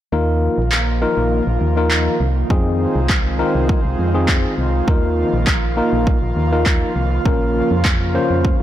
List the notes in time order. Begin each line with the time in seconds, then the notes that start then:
0.12 D#2 D#3 F3 A#3 D#4 F4 A#4
0.58 A#1
0.72 clap
1.01 A#3 D#4 F4 A#4
1.17 A#1
1.47 A#1
1.61 D#2
1.77 A#3 D#4 F4 A#4
1.91 clap
2.20 C2
2.50 F2 G#3 C4 D#4 F4 G#4, kick
2.95 C2
3.09 kick, clap
3.39 C4 D#4 F4 A#4
3.55 C2
3.69 kick
3.85 C2
3.99 F2
4.14 C4 D#4 F4 G#4
4.28 kick, clap
4.58 C2
4.88 D#2 F3 A#3 D#4 F4 A#4, kick
5.33 A#1
5.47 kick, clap
5.77 A#3 D#4 F4 A#4
5.93 A#1
6.07 kick
6.22 A#1
6.36 D#2
6.52 A#3 D#4 F4 A#4
6.66 kick, clap
6.96 C2
7.25 A#1 C#3 A#3 C#4 F4 A#4, kick
7.71 F2
7.85 kick, clap
8.15 A#3 C#4 F4 C5
8.30 F2
8.45 kick